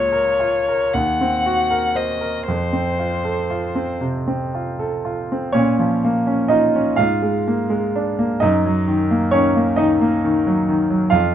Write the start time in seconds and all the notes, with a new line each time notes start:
Already playing: C#2 A#3 F4 C#5
0.12 A#4
0.40 F4
0.68 A#4
0.94 D#2 F#5
1.21 C4
1.46 F#4
1.71 A#4
1.95 C5 D#5
2.21 A#4
2.48 F2 C5
2.73 C4
2.99 F4
3.25 A4
3.50 F4
3.75 C4
4.01 C3
4.28 C4
4.55 F4
4.79 A4
5.05 F4
5.32 C4
5.53 A#2 C#4 C#5
5.79 F3
6.05 A#3
6.27 C#4
6.48 D#4 F4 D#5
6.76 C#4
6.96 G#2 F4 F5
7.22 G#3
7.48 A#3
7.70 G#3
7.96 D4
8.19 A#3
8.40 F#2 D#4 D#5
8.66 F#3
8.88 D#3
9.11 A#3
9.31 D#3 C#4 C#5
9.56 A#3
9.76 D#3 D#4 D#5
10.01 A#3
10.24 D#3
10.47 F#3
10.69 D#3
10.90 F#3
11.10 F2 F4 F5